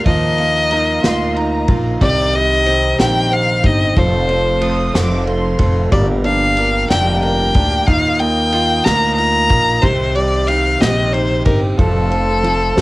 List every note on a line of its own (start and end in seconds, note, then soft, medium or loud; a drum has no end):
0.06 1.00 D#2 loud
0.06 0.71 D#3 medium
0.06 1.98 F3 medium
0.06 0.71 A#3 medium
0.06 0.73 D#4 medium
0.06 0.72 F4 medium
0.06 2.00 A#4 medium
0.06 1.65 D#5 loud
0.06 2.00 F5 medium
0.06 3.93 A#5 medium
0.06 kick loud
0.06 ride medium
0.38 1.65 A#3 medium
0.38 ride soft
0.71 1.04 D#3 medium
0.71 1.03 A#3 medium
0.71 1.35 D#4 medium
0.71 1.03 D#4 medium
0.71 1.02 F4 medium
0.71 0.86 A#5 medium
0.71 ride medium
1.03 1.65 D2 medium
1.03 1.69 A#3 medium
1.03 1.69 D#4 medium
1.03 1.67 F4 medium
1.03 1.68 F4 medium
1.03 1.33 C6 loud
1.03 snare loud
1.03 ride medium
1.36 1.99 D#4 medium
1.36 1.85 A#5 medium
1.36 ride soft
1.68 1.99 A#1 medium
1.68 2.01 A#3 medium
1.68 2.01 D#4 soft
1.68 2.01 F4 medium
1.68 2.00 F4 medium
1.68 kick loud
1.68 ride medium
2.01 2.95 C2 loud
2.01 2.66 C3 medium
2.01 3.93 C3 medium
2.01 2.65 D#3 medium
2.01 2.66 C4 medium
2.01 2.66 D#4 medium
2.01 2.67 G4 medium
2.01 3.95 C5 medium
2.01 2.37 D5 loud
2.01 3.95 G5 medium
2.01 kick loud
2.01 ride medium
2.33 3.60 G3 medium
2.33 3.00 D#5 loud
2.33 ride soft
2.66 2.99 D#3 medium
2.66 3.30 C4 medium
2.66 2.98 C4 medium
2.66 2.98 D#4 medium
2.66 2.98 G4 medium
2.66 ride medium
2.99 3.60 A#1 medium
2.99 3.65 C3 medium
2.99 3.65 D#3 medium
2.99 3.65 C4 medium
2.99 3.64 D#4 medium
2.99 3.63 D#4 medium
2.99 3.63 G4 medium
2.99 3.35 G5 loud
2.99 snare loud
2.99 ride medium
3.31 3.95 C4 medium
3.31 3.67 F5 loud
3.31 ride soft
3.64 3.95 G1 medium
3.64 3.97 C4 soft
3.64 3.96 D#4 medium
3.64 3.97 D#4 soft
3.64 3.96 G4 soft
3.64 4.00 D#5 medium
3.64 kick loud
3.64 ride medium
3.96 4.90 F1 medium
3.96 4.62 F2 medium
3.96 4.62 C3 medium
3.96 5.88 F3 medium
3.96 4.60 F3 medium
3.96 4.60 A3 medium
3.96 4.61 C4 medium
3.96 5.90 A4 medium
3.96 4.62 A4 medium
3.96 4.95 C5 medium
3.96 9.79 F5 medium
3.96 5.90 C6 medium
3.96 kick loud
3.96 ride medium
4.29 4.92 C4 medium
4.29 ride soft
4.61 4.94 F3 medium
4.61 4.94 A3 medium
4.61 4.94 C4 medium
4.61 5.24 A4 medium
4.61 4.93 A4 medium
4.61 4.92 D#6 medium
4.61 ride medium
4.94 5.56 F1 medium
4.94 5.60 F2 medium
4.94 5.60 C3 medium
4.94 5.61 F3 medium
4.94 5.60 A3 medium
4.94 5.58 C4 medium
4.94 5.59 C4 medium
4.94 5.58 A4 medium
4.94 5.27 D6 medium
4.94 snare loud
4.94 ride medium
5.26 5.90 A4 medium
5.26 5.73 C6 medium
5.26 ride soft
5.59 5.90 F1 medium
5.59 5.92 F3 soft
5.59 5.93 A3 soft
5.59 5.91 C4 medium
5.59 5.92 C4 medium
5.59 5.92 A4 medium
5.59 kick medium
5.59 ride medium
5.91 6.86 G1 loud
5.91 6.57 G2 medium
5.91 6.57 D3 medium
5.91 6.57 F3 medium
5.91 7.83 G3 medium
5.91 6.58 A#3 medium
5.91 6.58 D4 medium
5.91 7.85 G4 medium
5.91 6.58 G4 medium
5.91 6.07 D5 medium
5.91 7.85 A#5 medium
5.91 kick loud
5.91 ride medium
6.24 6.89 D4 medium
6.24 6.86 F5 loud
6.24 ride soft
6.57 6.90 F3 medium
6.57 6.90 A#3 medium
6.57 6.89 D4 medium
6.57 6.89 G4 medium
6.57 7.21 A#4 medium
6.57 ride medium
6.90 7.51 F1 medium
6.90 7.56 G2 medium
6.90 7.56 D3 medium
6.90 7.57 F3 medium
6.90 7.56 A#3 medium
6.90 7.54 D4 medium
6.90 7.55 D4 medium
6.90 7.54 G4 medium
6.90 7.21 G5 loud
6.90 snare loud
6.90 ride medium
7.23 7.86 A#4 medium
7.23 7.88 G5 loud
7.23 ride soft
7.54 7.86 D2 loud
7.54 7.88 F3 soft
7.54 7.87 A#3 soft
7.54 7.87 D4 medium
7.54 7.88 D4 medium
7.54 7.88 G4 medium
7.54 kick loud
7.54 ride medium
7.86 8.81 D#2 loud
7.86 8.52 D#3 medium
7.86 8.52 A#3 medium
7.86 9.79 D#4 medium
7.86 8.54 D#4 medium
7.86 8.53 F4 medium
7.86 9.81 A#4 medium
7.86 8.21 F5 loud
7.86 9.81 D#6 medium
7.86 kick loud
7.86 ride medium
8.19 9.47 A#3 medium
8.19 8.86 G5 loud
8.19 ride soft
8.53 8.85 D#3 medium
8.53 8.85 A#3 medium
8.53 8.84 D#4 medium
8.53 9.17 F4 medium
8.53 8.84 F4 medium
8.53 ride medium
8.85 9.47 D2 medium
8.85 9.51 A#3 medium
8.85 9.51 D#4 medium
8.85 9.49 F4 medium
8.85 9.49 A#4 medium
8.85 9.15 A#5 loud
8.85 snare loud
8.85 ride medium
9.16 9.81 F4 medium
9.16 9.83 A#5 loud
9.16 ride soft
9.50 9.81 A#1 medium
9.50 9.83 A#3 soft
9.50 9.83 D#4 soft
9.50 9.83 F4 medium
9.50 9.82 A#4 medium
9.50 kick loud
9.50 ride medium
9.82 10.77 C2 medium
9.82 11.74 C3 medium
9.82 10.48 C3 medium
9.82 10.47 D#3 medium
9.82 10.48 C4 medium
9.82 10.48 D#4 medium
9.82 10.49 G4 medium
9.82 10.17 C5 loud
9.82 11.77 C5 medium
9.82 11.77 G5 medium
9.82 kick loud
9.82 ride medium
10.15 11.42 G3 medium
10.15 10.49 D5 medium
10.15 ride soft
10.47 10.80 D#3 medium
10.47 10.80 C4 medium
10.47 11.12 D#4 medium
10.47 10.80 D#4 medium
10.47 10.79 G4 medium
10.47 10.83 F5 medium
10.47 ride medium
10.80 11.42 A#1 loud
10.80 11.46 C3 medium
10.80 11.46 D#3 medium
10.80 11.47 C4 medium
10.80 11.45 D#4 medium
10.80 11.44 G4 medium
10.80 11.15 D#5 medium
10.80 snare loud
10.80 ride medium
11.13 11.77 D#4 medium
11.13 11.44 C5 medium
11.13 ride soft
11.45 11.77 G1 medium
11.45 11.78 C4 soft
11.45 11.79 D#4 soft
11.45 11.77 G4 medium
11.45 11.78 G4 medium
11.45 11.60 A#4 medium
11.45 kick loud
11.45 ride medium
11.78 12.73 F1 loud
11.78 12.43 F2 medium
11.78 12.44 C3 medium
11.78 12.42 F3 medium
11.78 12.43 F3 medium
11.78 12.44 A3 medium
11.78 12.44 C4 medium
11.78 12.81 A4 medium
11.78 12.45 A4 medium
11.78 12.81 A4 medium
11.78 12.81 F5 medium
11.78 12.81 C6 medium
11.78 kick loud
11.78 ride medium
12.10 12.74 C4 medium
12.10 ride soft
12.43 12.81 F3 medium
12.43 12.76 F3 medium
12.43 12.76 A3 medium
12.43 12.76 C4 medium
12.43 12.76 A4 medium
12.43 ride medium
12.75 12.81 F1 medium
12.75 12.81 F2 medium
12.75 12.81 C3 medium
12.75 12.81 F3 medium
12.75 12.81 A3 medium
12.75 12.81 C4 medium
12.75 12.81 A4 medium
12.75 snare loud
12.75 ride medium